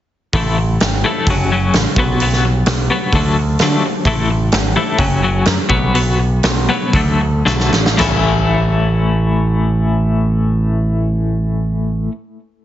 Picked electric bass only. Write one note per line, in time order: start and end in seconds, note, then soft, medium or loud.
0.33 0.77 A1 medium
0.81 1.03 G#1 medium
1.27 1.70 F#1 medium
1.74 1.85 A1 medium
1.96 2.62 B1 medium
2.66 2.88 B1 medium
3.13 3.56 D2 medium
3.60 3.81 D3 medium
4.05 4.48 A1 medium
4.52 4.74 G#1 medium
4.99 5.43 F#1 medium
5.47 5.58 F#2 medium
5.70 6.39 B1 medium
6.93 7.42 D2 medium
7.46 7.70 B1 medium
7.72 7.97 A1 medium
7.99 12.07 A1 medium